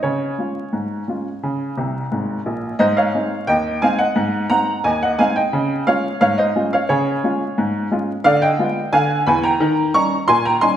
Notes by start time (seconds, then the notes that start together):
0.03 C#3 C#5
0.38 G#3 C#4 F4
0.73 G#2
1.08 G#3 C#4 F4
1.43 C#3
1.77 C2 C3
2.12 G#1 G#2
2.46 A#1 A#2
2.79 G#2 C5 D#5
2.97 C#5 F5
3.15 G#3 C4 D#4
3.47 D#2 D#5 G5
3.82 G#3 C4 D#4 F5 G#5
3.99 D#5 F#5
4.16 G#2
4.50 G#3 C4 D#4 F#5 A#5
4.84 D#2 D#5 G#5
5.03 D#5 F#5
5.19 G#3 C4 D#4 F5 G#5
5.36 D#5 G5
5.53 C#3
5.87 G#3 C#4 F4 C#5 F5
6.21 G#2 C#5 F5
6.38 C5 D#5
6.56 G#3 C#4 F4
6.73 C#5 F5
6.89 C#3 G#4 C#5
7.24 G#3 C#4 F4
7.58 G#2
7.92 G#3 C#4 F4
8.24 D3 D5 F5
8.42 D#5 G5
8.59 G#3 B3 F4
8.93 D3 F5 G#5
9.27 E2 E3 G#5 B5
9.44 G5 A#5
9.60 D#3
9.94 G3 C#4 D#4 A#5 C#6
10.28 A#2 G#5 C6
10.45 G5 A#5
10.61 G3 C#4 D#4 G#5 C6